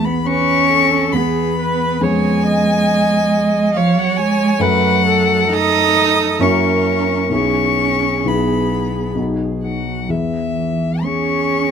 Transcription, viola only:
0.27 B4
0.71 A4
1.15 G#4
1.59 B4
2.04 C#5
2.46 D#5
3.77 C#5
4.61 B4
5.07 A4
6.41 A#4
7.33 G#4
11.05 G#4

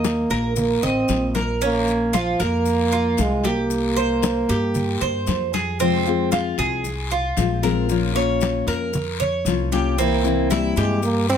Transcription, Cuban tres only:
Already playing: D#5
0.31 A#4
0.83 D#5
1.35 A#4
1.62 C#4
2.13 F4
2.40 A#4
2.92 F4
3.45 G4
3.96 C5
4.49 G4
5.01 C5
5.54 G#4
5.80 C4
6.32 F4
6.59 G#4
7.11 F4
7.63 A#4
8.16 C#5
8.68 A#4
9.20 C#5
9.72 G4
9.98 C4
10.51 E4
10.77 G4
11.30 E4

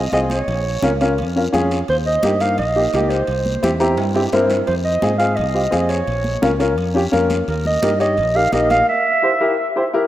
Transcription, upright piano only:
0.13 C4 F4 G#4
0.83 C#4 F4 A#4
1.01 C#4 F4 A#4
1.36 C#4 F4 A#4
1.53 C#4 F4 G#4
2.23 A#3 D#4 G4
2.40 A#3 D#4 A#4
2.76 A#3 D#4 G4
2.94 A#3 D#4 G4
3.62 C4 E4 G4
3.80 C4 E4 G4 A#5
3.98 G5
4.14 C4 E4 G4
4.33 C4 E4 A#4 C5
5.02 C4 F4 G#4
5.19 C4 F4 G#4
5.54 C4 F4 G4
5.71 C4 F4 G#4
6.42 C#4 F4 A#4
6.59 C#4 F4 A#4
6.94 C#4 F4 G4
7.12 C#4 F4 A#4
7.82 D#4 G4 A#4
8.00 D#4 G4 C#5
8.35 D#4 G4 A#4
8.52 D#4 G4 A#4
9.22 E4 G4 C5
9.40 E4 G4 A#4
9.76 E4 G4 C5
9.93 E4 G4 A#4

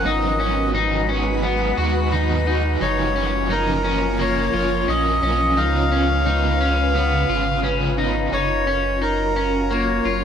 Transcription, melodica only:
0.07 D#5
2.82 C#5
3.51 A#4
4.21 C#5
4.89 D#5
5.58 F5
8.33 C#5
9.02 A#4
9.71 C#5

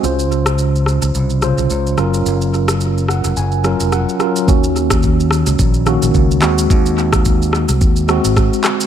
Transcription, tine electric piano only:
0.02 C#3 C#4 F4 C5
1.41 C#3 C#4 F4 C5
1.97 F#3 C#4 F4 A#4
3.09 F#5
3.37 G#5
3.63 F#3 C#4 F4 A#4
3.92 F#5
4.19 F#3 C#4 F4 A#4
4.47 D#3 A#3 C#4 F#4
5.86 D#3 A#3 C#4 F#4
6.41 G#3 C4 F#4
8.08 G#3 C4 F#4

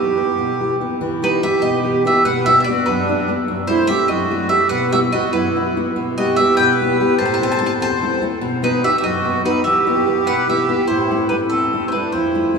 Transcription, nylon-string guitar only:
Already playing: E3 B3 E4 G4
0.17 B3 E4 G4
0.38 B2
0.60 B3 E4 G4
0.80 B3 E4 G4
1.01 E3
1.22 B3 E4 G4
1.42 B3 E4 G4
1.62 B2
1.84 B3 E4 G4
2.05 B3 E4 G4
2.25 B2
2.46 B3 D4 F#4
2.68 B3 D4 F#4
2.88 F#2
3.08 B3 D4 F#4
3.28 B3 D4 F#4
3.48 F#2
3.69 A3 C4 F#4
3.90 A3 C4 F#4
4.10 F#2
4.30 A3 C4 F#4
4.51 A3 C4 F#4
4.71 B2
4.92 B3 E4 F#4
5.13 B3 E4 F#4
5.34 F#2
5.56 B3 E4 F#4
5.77 B3 E4 F#4
5.96 B2
6.18 B3 E4 G4
6.39 B3 E4 G4
6.59 B2
6.81 B3 E4 G4
7.00 B3 E4 G4
7.21 A2
7.41 C4 E4 A4
7.61 C4 E4 A4
7.81 E2
8.02 C4 E4 A4
8.22 C4 E4 A4
8.41 B2
8.62 B3 D#4 F#4
8.83 B3 D#4 F#4
9.04 F#2
9.24 B3 D#4 F#4
9.45 B3 D#4 F#4
9.66 E3
9.87 B3 E4 G4
10.07 B3 E4 G4
10.29 B2
10.48 B3 E4 G4
10.69 B3 E4 G4
10.90 A2
11.10 A3 C4 E4
11.31 A3 C4 E4
11.52 E2
11.73 A3 C4 E4
11.95 A3 C4 E4
12.14 F2
12.35 F3 A3 E4
12.55 F3 A3

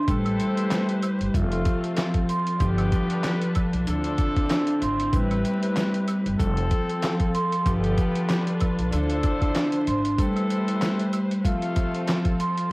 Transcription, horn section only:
0.08 E3 C4 A4
1.34 C3 A3 F4
2.59 D3 B3 G4
3.89 F3 D4 A4
5.14 G3 E4 B4
6.39 F3 C4 A4
7.66 D3 B3 G4
8.91 F3 D4 A4
10.18 E3 C4 A4
11.45 C3 A3 F4

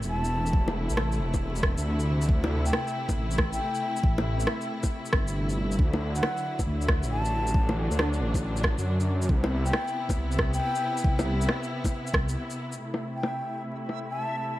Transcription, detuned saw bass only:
0.03 E1
0.90 A1
1.20 E1
1.78 D2
3.17 A1
4.03 A1
5.13 G1
5.79 D2
6.67 D2
7.03 A1
7.91 D2
8.20 A1
8.78 F#2
9.29 C2
10.17 C2
11.04 C2
12.14 C2

